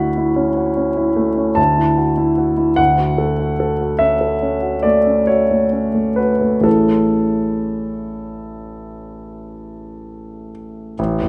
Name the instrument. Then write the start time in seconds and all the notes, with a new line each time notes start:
grand piano
Already playing: D2 E4 F#4 B5
0.17 E4
0.36 C#4
0.57 F#4
0.77 C#4
0.97 E4
1.16 A3
1.37 C#4
1.55 D2 A5
1.77 E4
1.97 F#4
2.18 E4
2.38 F#4
2.57 E4
2.76 D2 F#5
2.98 F#4
3.18 A4
3.40 F#4
3.60 A4
3.81 F#4
3.99 C#4 E5
4.21 A4
4.42 C#4
4.62 F#4
4.83 A3 D5
5.07 C#4
5.27 F#4 C#5
5.51 A3
5.72 C#4
5.94 A3
6.16 F#4 B4
6.41 A3
6.61 A1 A3 C#4 E4 G#4 A4
10.99 A1
11.21 E2